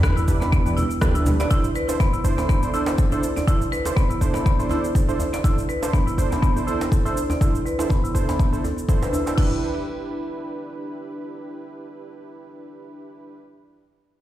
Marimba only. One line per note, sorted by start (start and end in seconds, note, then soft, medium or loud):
0.03 0.15 B3 medium
0.17 0.23 E4 medium
0.41 0.51 B3 medium
0.52 0.65 B3 loud
0.77 0.89 E4 medium
1.02 1.09 A4 medium
1.15 1.21 E4 medium
1.40 1.50 D5 medium
1.51 1.63 E4 medium
1.76 1.88 B4 loud
2.00 2.12 B3 medium
2.13 2.19 E4 medium
2.38 2.48 B3 medium
2.49 2.61 B3 loud
2.74 2.86 E4 medium
2.98 3.06 A4 medium
3.12 3.18 E4 medium
3.36 3.46 D5 medium
3.47 3.60 E4 medium
3.72 3.84 B4 medium
3.96 4.09 B3 medium
4.10 4.16 E4 medium
4.35 4.45 B3 medium
4.46 4.58 B3 loud
4.71 4.83 E4 medium
4.95 5.02 A4 medium
5.09 5.15 E4 medium
5.33 5.43 D5 medium
5.44 5.56 E4 medium
5.69 5.81 B4 medium
5.93 6.06 B3 medium
6.07 6.13 E4 medium
6.31 6.41 B3 medium
6.42 6.55 B3 loud
6.67 6.79 E4 medium
6.92 6.99 A4 medium
7.05 7.11 E4 medium
7.30 7.40 D5 medium
7.41 7.53 E4 medium
7.66 7.78 B4 medium
7.90 8.02 B3 medium
8.04 8.10 E4 medium
8.29 8.38 B3 medium
8.40 8.52 B3 medium
8.64 8.76 A4 medium
8.89 9.01 A4 medium
9.02 9.12 B4 medium
9.13 9.25 E4 medium
9.26 9.36 E4 medium
9.38 9.61 E4 medium